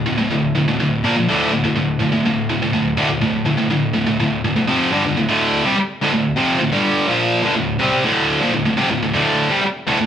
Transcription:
0.06 D2 A2
0.18 D2 A2
0.31 D2 A2
0.56 D2 A2
0.68 D2 A2
0.80 D2 A2
1.04 A#2 F3 A#3
1.17 A#2 F3
1.29 D2 A2 D3
1.53 D2 A2
1.65 D2 A2
1.76 D2 A2
2.00 D2 A2
2.12 D2 A2
2.26 D2 A2
2.50 D2 A2
2.62 D2 A2
2.73 D2 A2
2.97 D2 A2 D3
3.09 D2 A2
3.21 D2 A2
3.45 D2 A2
3.57 D2 A2
3.70 D2 A2
3.93 D2 A2
4.06 D2 A2
4.20 D2 A2
4.45 D2 A2
4.56 D2 A2
4.68 F2 C3 F3
4.92 G2 D3 G3
5.05 G2 D3
5.17 D2 A2
5.28 D2 A2 D3
5.64 C3 G3
5.77 muted distorted electric guitar stroke
6.02 D2 A2
6.13 D2 A2
6.36 F2 C3 F3
6.59 D2 A2
6.72 G2 D3 G3
7.07 A#2 F3 A#3
7.44 G2 D3
7.56 D2 A2
7.79 C3 G3 C4
8.04 D2 A2 D3
8.41 A#2 F3
8.54 D2 A2
8.66 D2 A2
8.77 F2 C3
8.90 D2 A2
9.03 D2 A2
9.14 D2 A2 D3
9.50 C3 G3
9.63 muted distorted electric guitar stroke
9.87 D2 A2
9.99 D2 A2

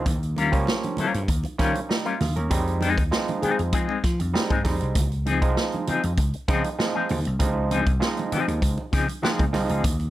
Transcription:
0.06 D#2, kick, closed hi-hat, muted conga, low conga
0.23 closed hi-hat
0.36 G3 C#4 F4 A#4, closed hi-hat, high conga
0.52 C#2 F3 G3 A#3 C#4, kick, closed hi-hat
0.67 snare, muted conga
0.83 muted clean electric guitar stroke, closed hi-hat, muted conga, high conga
0.97 G3 C#4 F4 A#4, muted slap bass stroke, closed hi-hat, low conga
1.14 G2, closed hi-hat
1.28 D#2, muted clean electric guitar stroke, kick, closed hi-hat, muted conga
1.44 muted clean electric guitar stroke, closed hi-hat, muted conga
1.58 D#3 F3 G3 A#3 C#4 F4 A#4, kick, snare, closed hi-hat
1.75 muted clean electric guitar stroke, closed hi-hat, high conga
1.89 G3 D#4, muted clean electric guitar stroke, snare
2.05 G3 C#4 F4 A#4, closed hi-hat
2.20 D#2, muted clean electric guitar stroke, snare, open hi-hat, high conga, low conga
2.36 D#2 C#4 A#4, muted clean electric guitar stroke, closed hi-hat
2.50 F2 G3 G#3 C4 D#4, kick, closed hi-hat, muted conga, low conga
2.67 closed hi-hat
2.80 G#3 C4 D#4 G#4, closed hi-hat, high conga
2.98 D#2, kick, closed hi-hat
3.11 F3 G#3 C4 D#4, snare, muted conga
3.28 muted clean electric guitar stroke, closed hi-hat, muted conga, high conga
3.42 G#3 C4 D#4 G#4, muted slap bass stroke, closed hi-hat, low conga
3.58 F2, muted clean electric guitar stroke, closed hi-hat
3.73 F3 G#3 C4 D#4 G#4, kick, closed hi-hat, muted conga
3.89 muted conga
4.04 F3, kick, snare, closed hi-hat
4.19 F2, muted clean electric guitar stroke, closed hi-hat, high conga
4.34 G3 G#3 C4 D#4, muted clean electric guitar stroke, snare
4.50 G#2 G#3 C4 D#4 G#4, kick, closed hi-hat, muted conga
4.64 F2 G3 G#3 C4 D#4, muted clean electric guitar stroke, kick, snare, open hi-hat, high conga, low conga
4.80 C2, muted clean electric guitar stroke, closed hi-hat
4.95 C#2, kick, closed hi-hat, muted conga, low conga
5.12 closed hi-hat
5.25 F3 C4 D#4 G#4, closed hi-hat, high conga
5.42 C2 F3 G#3 C4 D#4, kick, closed hi-hat
5.57 snare, muted conga
5.72 muted clean electric guitar stroke, closed hi-hat, high conga
5.87 F3 C4 D#4 G#4, muted slap bass stroke, closed hi-hat, low conga
6.03 F2, closed hi-hat
6.17 C#2, muted clean electric guitar stroke, kick, closed hi-hat, muted conga
6.33 muted clean electric guitar stroke, closed hi-hat
6.48 C#3 F3 G#3 C4 D#4 G#4, kick, snare, closed hi-hat
6.64 muted clean electric guitar stroke, closed hi-hat, high conga
6.79 F3 G#3 C4 D#4, muted clean electric guitar stroke, snare, muted conga
6.95 F3 C4 D#4 G#4
7.09 D#2, muted clean electric guitar stroke, open hi-hat, high conga, low conga
7.25 C2, muted clean electric guitar stroke, closed hi-hat
7.39 C#2 F3 G#3 C4 D#4, kick, closed hi-hat, low conga
7.70 F3 C4 D#4 G#4, closed hi-hat, high conga
7.86 C2, kick, closed hi-hat
8.00 F3 G#3 C4 C#4, snare, muted conga
8.07 D#4
8.17 muted clean electric guitar stroke, closed hi-hat, muted conga, high conga
8.31 F3 C4 D#4 G#4, muted slap bass stroke, closed hi-hat, low conga
8.47 D#2, muted clean electric guitar stroke, closed hi-hat
8.61 C#2, muted clean electric guitar stroke, kick, closed hi-hat, muted conga
8.78 muted clean electric guitar stroke, muted conga
8.92 C#3 F3 C4 D#4 G#4, kick, snare, closed hi-hat
9.08 muted clean electric guitar stroke, closed hi-hat, high conga
9.22 F3 G#3 C4 D#4 G#4, snare, muted conga
9.39 C#2, kick, closed hi-hat
9.53 C2 F3 G#3 C4 D#4, muted clean electric guitar stroke, snare, open hi-hat, high conga, low conga
9.69 C#2 F3 C4 D#4 G#4, closed hi-hat
9.84 D#2, kick, closed hi-hat, muted conga, low conga
10.00 closed hi-hat, muted conga

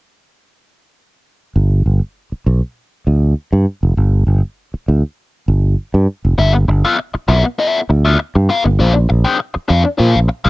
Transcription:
1.56 G1
1.86 G1
2.32 muted fingered electric bass stroke
2.46 B1
3.07 D2
3.53 G2
3.83 F1
3.97 G1
4.27 G1
4.74 muted fingered electric bass stroke
4.88 D2
5.48 G1
5.94 G2
6.25 F1
6.38 G1 B3 F4 A4 E5
6.54 muted overdriven electric guitar stroke
6.68 G1, muted overdriven electric guitar stroke
6.85 B3 F4 A4 F5
6.98 muted overdriven electric guitar stroke
7.14 muted overdriven electric guitar stroke, muted fingered electric bass stroke
7.28 B1 B3 F4 A4 E5
7.44 muted overdriven electric guitar stroke
7.58 B3 F4 A4 E5
7.89 D2, muted overdriven electric guitar stroke
8.05 B3 F4 A4 E5
8.19 muted overdriven electric guitar stroke
8.35 G2, muted overdriven electric guitar stroke
8.49 B3 F4 A4 F5
8.65 G1, muted overdriven electric guitar stroke
8.79 A#1 D4 G#4 C5 F5
8.94 muted overdriven electric guitar stroke
9.09 A#1, muted overdriven electric guitar stroke
9.24 D4 G#4 C5 G5
9.39 muted overdriven electric guitar stroke
9.54 muted overdriven electric guitar stroke, muted fingered electric bass stroke
9.68 F2 D4 G#4 C5 F5
9.84 muted overdriven electric guitar stroke
9.98 A#2 D4 G#4 C5 F5
10.16 A#1
10.28 muted overdriven electric guitar stroke
10.44 C2 D4 G#4 C5 F5

